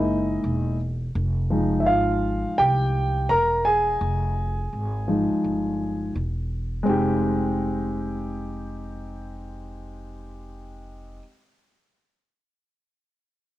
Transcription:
0.00 0.40 F#1 medium
0.00 0.75 G#3 medium
0.00 0.76 A#3 soft
0.00 0.76 D#4 medium
0.00 0.76 E4 medium
0.00 0.75 D#5 medium
0.44 1.12 E1 medium
1.15 1.87 F1 loud
1.50 4.32 F3 soft
1.50 4.33 G#3 soft
1.50 4.33 D#4 medium
1.80 1.86 E5 medium
1.86 2.42 G#1 medium
1.86 2.55 F4 medium
1.86 2.60 F5 medium
2.46 muted upright bass stroke soft
2.58 3.26 C2 medium
2.58 3.26 G4 medium
2.58 3.25 G5 medium
3.29 3.98 E1 medium
3.29 3.64 A#4 medium
3.29 3.66 A#5 loud
3.65 6.12 G#4 medium
3.65 6.11 G#5 medium
4.01 4.69 F1 medium
4.73 5.28 G#1 medium
5.08 6.11 F3 medium
5.08 6.11 G#3 soft
5.08 6.12 D#4 medium
5.31 muted upright bass stroke soft
5.44 6.12 G1 medium
6.16 6.83 E1 medium
6.83 11.18 F1 medium
6.83 11.17 G#3 medium
6.83 11.18 C4 medium
6.87 11.19 D#4 medium
6.87 11.20 G4 medium

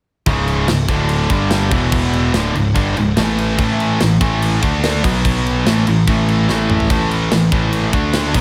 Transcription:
0.26 0.66 C#1 loud
0.26 0.68 C#2 loud
0.26 0.68 G#2 medium
0.26 0.68 C#3 loud
0.26 kick loud
0.26 crash medium
0.48 crash medium
0.68 0.88 C#1 medium
0.68 0.85 C#2 medium
0.68 0.86 G#2 medium
0.68 snare loud
0.68 crash medium
0.89 1.28 D1 medium
0.89 1.30 D2 loud
0.89 1.30 A2 loud
0.89 1.31 D3 loud
0.89 kick loud
0.89 crash medium
1.09 crash medium
1.30 1.69 G1 medium
1.30 1.72 G2 medium
1.30 1.72 D3 loud
1.30 1.72 G3 medium
1.30 kick loud
1.30 crash medium
1.51 snare loud
1.51 crash medium
1.71 2.30 E1 medium
1.71 2.33 E2 medium
1.71 2.33 B2 medium
1.71 2.34 E3 loud
1.71 kick loud
1.71 crash medium
1.92 kick loud
1.92 crash loud
2.13 crash medium
2.34 2.54 D1 loud
2.34 2.54 D2 medium
2.34 2.54 A2 loud
2.34 2.55 D3 loud
2.34 snare loud
2.34 crash medium
2.54 2.74 C#1 medium
2.54 2.72 C#2 medium
2.54 2.72 G#2 medium
2.54 crash medium
2.76 2.95 G1 loud
2.76 2.96 G2 loud
2.76 2.97 D3 loud
2.76 2.97 G3 loud
2.76 kick medium
2.76 crash medium
2.97 3.16 C#1 medium
2.97 3.14 C#2 medium
2.97 3.14 G#2 medium
2.97 crash medium
3.17 3.56 A1 loud
3.17 3.58 A2 loud
3.17 3.59 E3 loud
3.17 3.59 A3 loud
3.17 snare loud
3.17 crash medium
3.38 crash medium
3.59 3.97 A1 loud
3.59 4.00 A2 loud
3.59 4.00 E3 loud
3.59 4.00 A3 loud
3.59 kick loud
3.59 crash medium
3.80 crash medium
4.01 4.20 A1 medium
4.01 4.17 A2 medium
4.01 4.17 E3 medium
4.01 snare loud
4.01 crash medium
4.21 4.59 A1 loud
4.21 4.62 A2 medium
4.21 4.62 E3 loud
4.21 4.62 A3 loud
4.21 kick loud
4.21 crash medium
4.42 crash medium
4.63 5.01 D2 medium
4.63 5.03 D3 medium
4.63 5.04 A3 loud
4.63 5.04 D4 medium
4.63 kick loud
4.63 crash medium
4.84 snare loud
4.84 crash medium
5.04 5.62 B1 loud
5.04 5.66 B2 medium
5.04 5.66 F#3 loud
5.04 5.66 B3 loud
5.04 kick loud
5.04 crash loud
5.25 kick loud
5.25 crash loud
5.46 crash medium
5.67 5.86 A1 loud
5.67 5.85 A2 medium
5.67 5.86 E3 loud
5.67 5.87 A3 loud
5.67 snare loud
5.67 crash medium
5.87 6.06 A1 medium
5.87 6.03 A2 medium
5.87 6.03 E3 medium
5.87 crash medium
6.07 6.46 A1 loud
6.07 6.47 A2 loud
6.07 6.48 E3 loud
6.07 6.48 A3 medium
6.07 kick loud
6.07 crash medium
6.28 crash medium
6.48 6.88 A1 loud
6.48 6.89 A2 medium
6.48 6.90 E3 loud
6.48 6.90 A3 loud
6.48 snare medium
6.70 mid tom loud
6.80 floor tom medium
6.90 7.29 A1 medium
6.90 7.31 A2 medium
6.90 7.31 E3 loud
6.90 7.32 A3 loud
6.90 kick loud
6.90 crash medium
7.11 crash medium
7.31 7.51 A1 medium
7.31 7.49 A2 medium
7.31 7.49 E3 medium
7.31 snare loud
7.31 crash medium
7.52 7.91 A1 medium
7.52 7.93 A2 medium
7.52 7.92 E3 loud
7.52 7.93 A3 loud
7.52 kick loud
7.52 crash medium
7.73 crash medium
7.93 8.32 D2 medium
7.93 8.34 D3 medium
7.93 8.34 A3 loud
7.93 8.35 D4 medium
7.93 kick loud
7.93 crash medium
8.14 snare loud
8.14 crash medium
8.34 8.41 B1 medium
8.34 8.41 B2 medium
8.34 8.41 F#3 medium
8.34 8.41 B3 loud
8.34 kick loud
8.34 crash loud

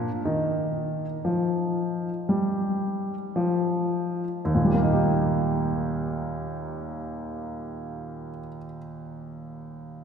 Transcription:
0.00 0.22 D4 soft
0.25 1.04 D#3 medium
0.25 4.40 D#4 soft
1.25 2.08 F3 medium
2.29 3.13 G3 medium
3.36 4.23 F3 medium
4.45 8.28 D#2 medium
4.55 8.37 A#2 soft
4.64 8.47 G3 soft
4.74 8.56 A#3 medium
4.83 8.66 D#4 soft
4.93 8.76 G4 soft

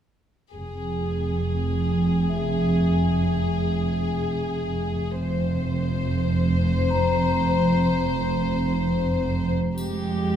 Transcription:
0.54 5.12 F1 soft
0.54 5.12 F2 soft
0.54 5.12 G#4 soft
2.29 5.71 E5 soft
5.16 9.54 F1 soft
5.16 9.53 F2 soft
5.16 9.54 C5 soft
6.90 9.74 A#5 soft
9.77 10.36 F2 soft
9.77 10.36 G#3 soft
9.77 10.36 G4 soft
9.77 triangle soft

